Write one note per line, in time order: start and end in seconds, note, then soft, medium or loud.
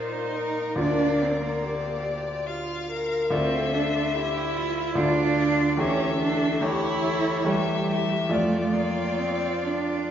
0.00 0.81 A#2 soft
0.00 0.77 A#3 soft
0.00 0.78 D#4 medium
0.00 0.77 F4 soft
0.00 1.64 A#4 soft
0.00 0.37 C5 medium
0.00 0.78 D5 soft
0.36 0.78 A#4 medium
0.76 3.27 D2 soft
0.76 3.27 A#3 soft
0.76 1.23 D4 medium
0.76 3.27 F4 soft
0.76 3.28 D5 soft
0.76 1.61 D5 medium
1.22 1.41 C4 medium
1.42 2.04 A#3 medium
1.62 2.49 G4 medium
1.62 2.49 D5 medium
2.47 2.90 F4 medium
2.47 3.32 F5 medium
2.91 3.34 A#4 medium
3.31 4.92 D2 medium
3.31 4.93 A3 soft
3.31 3.74 C4 medium
3.31 4.93 F4 soft
3.31 4.16 A4 medium
3.31 4.93 D5 soft
3.31 4.94 E5 medium
3.73 4.17 D4 medium
4.15 4.99 E4 loud
4.15 4.57 G4 medium
4.56 5.78 F4 medium
4.95 5.76 D2 medium
4.95 5.76 A3 soft
4.95 5.79 D4 loud
4.95 5.77 F4 medium
4.95 5.81 D5 medium
4.95 5.77 D5 soft
5.77 6.60 E2 medium
5.77 6.60 A3 medium
5.77 6.19 C#4 medium
5.77 6.60 G4 soft
5.77 6.64 A4 medium
5.77 6.60 C#5 soft
5.77 6.65 E5 medium
6.20 6.61 D4 medium
6.61 7.43 E2 medium
6.61 7.44 A3 medium
6.61 7.47 E4 loud
6.61 7.44 G4 soft
6.61 7.05 G4 medium
6.61 7.44 C#5 soft
6.61 7.51 C#5 medium
7.04 7.48 A4 medium
7.45 8.28 E2 medium
7.45 8.30 G3 medium
7.45 8.28 A3 soft
7.45 8.28 G4 soft
7.45 8.30 G4 medium
7.45 8.29 C#5 soft
7.49 7.90 E5 medium
7.90 8.35 E5 medium
8.29 10.08 F2 medium
8.29 10.08 A3 soft
8.29 8.75 A3 medium
8.29 10.08 F4 soft
8.29 10.11 F4 medium
8.29 10.09 D5 soft
8.29 10.11 D5 medium
8.74 9.20 A#3 medium
9.18 9.66 C4 medium
9.65 10.11 D4 medium